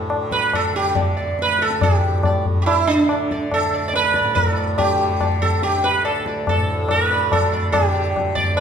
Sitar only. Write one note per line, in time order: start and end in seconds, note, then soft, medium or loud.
0.32 0.52 B4 medium
0.55 0.75 A4 medium
0.76 0.95 G4 medium
0.97 1.16 D5 soft
1.17 1.37 D5 soft
1.42 1.63 B4 medium
1.62 1.83 A4 medium
1.81 2.42 G4 medium
1.81 2.01 D5 soft
2.25 2.45 D5 soft
2.62 2.66 G4 medium
2.66 2.86 E4 medium
2.87 3.27 D4 medium
3.10 3.29 D5 soft
3.32 3.51 D5 soft
3.54 3.89 A4 medium
3.74 3.87 D5 soft
3.88 3.94 D5 medium
3.95 4.34 B4 loud
4.15 4.35 D5 soft
4.35 4.50 A#4 medium
4.50 4.78 A4 medium
4.56 4.77 D5 soft
4.78 5.41 G4 medium
5.21 5.40 D5 soft
5.42 5.61 A4 medium
5.63 5.85 G4 medium
5.84 6.04 B4 medium
6.05 6.25 A4 medium
6.27 6.46 D5 soft
6.49 6.90 A4 medium
6.91 7.33 B4 medium
7.12 7.30 D5 soft
7.33 7.72 A4 medium
7.53 7.72 D5 soft
7.72 8.38 G4 medium
7.95 8.14 D5 soft
8.35 8.55 D5 medium
8.57 8.60 B4 medium